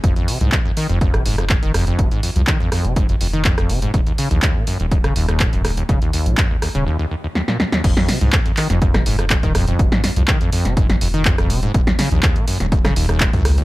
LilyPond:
<<
  \new Staff \with { instrumentName = "Acid bass" } { \clef bass \time 4/4 \key f \minor \tempo 4 = 123 f,16 f,16 c16 aes,16 f,16 f,16 ees16 f,16 r16 c16 aes,16 f,16 f,16 ees16 f,16 f,16 | c16 aes,16 f,16 f,16 ees16 f,16 f,16 c16 aes,16 f,16 f,16 ees16 f,16 f,16 c16 aes,16 | ees,16 ees,16 des16 ees,16 ees,16 bes,16 ges,16 ees,16 ees,16 des16 ees,16 ees,16 bes,16 ges,16 ees,16 ees,16 | des16 ees,16 ees,16 bes,16 ges,16 ees,16 ees,16 des16 ees,16 ees,16 ees,16 ees,16 ees,16 bes,16 ees,16 ees,16 |
f,16 f,16 c16 aes,16 f,16 f,16 ees16 f,16 r16 c16 aes,16 f,16 f,16 ees16 f,16 f,16 | c16 aes,16 f,16 f,16 ees16 f,16 f,16 c16 aes,16 f,16 f,16 ees16 f,16 f,16 c16 aes,16 | ees,16 ees,16 des16 ees,16 ees,16 bes,16 ges,16 ees,16 ees,16 des16 ees,16 ees,16 bes,16 ges,16 ees,16 ees,16 | }
  \new Staff \with { instrumentName = "Sub bass" } { \clef bass \time 4/4 \key f \minor f,,16 r8 c,16 r8. f,,8 r16 f,,8 r16 f,,8 r16 | f,,16 r8 c,16 r8. f,,8 r16 f,,8 r16 f,,8 r16 | ees,,16 r8 bes,,16 r8. ees,,8 r16 ees,,8 r16 ees,,8 r16 | ees,,16 r8 bes,,16 r8. ees,,16 r2 |
f,,16 r8 c,16 r8. f,,8 r16 f,,8 r16 ees,,8 r16 | f,,16 r8 c,16 r8. f,,8 r16 f,,8 r16 ees,,8 r16 | ees,,16 r8 bes,,16 r8. ees,,8 r16 ees,,8 r16 des,8 r16 | }
  \new DrumStaff \with { instrumentName = "Drums" } \drummode { \time 4/4 <hh bd>16 hh16 hho16 hh16 <hc hh bd>8 hho16 hh16 <hh bd>16 <hh ss>16 hho16 <hh ss>16 <hc hh bd>16 hh16 <hho ss>16 hh16 | <hh bd>16 hh16 hho16 hh16 <hc hh bd>8 <hho ss>16 hh16 <hh bd>16 hh16 hho16 hh16 <hc hh bd>16 <hh ss>16 hho16 hh16 | <hh bd>16 hh16 hho16 hh16 <hc hh bd>8 hho16 hh16 <hh bd>16 <hh ss>16 hho16 <hh ss>16 <hc hh bd>16 hh16 <hho ss>16 hh16 | <hh bd>16 hh16 hho16 hh16 <hc hh bd>8 <hho ss>16 hh16 r4 sn16 sn16 sn16 sn16 |
<cymc hh bd>16 sn16 <hho sn>16 hh16 <hc hh bd>16 hh16 <hc hho>16 <hh sn>16 <hh bd>16 <hh ss sn>16 hho16 <hh ss>16 <hc hh bd>16 <hh bd>16 <hho ss>16 hh16 | <hh bd>16 sn16 <hho sn>16 hh16 <hc hh bd>16 hh16 hho16 <hh sn>16 <hh bd>16 <hh sn>16 hho16 hh16 <hc hh bd>16 <hh ss>16 hho16 hh16 | <hh bd>16 sn16 <hho sn>16 hh16 <hc hh bd>16 hh16 hho16 <hh sn>16 <hh bd>16 <hh ss sn>16 hho16 <hh ss>16 <hc hh bd>16 <hh bd>16 <hho ss>16 hh16 | }
>>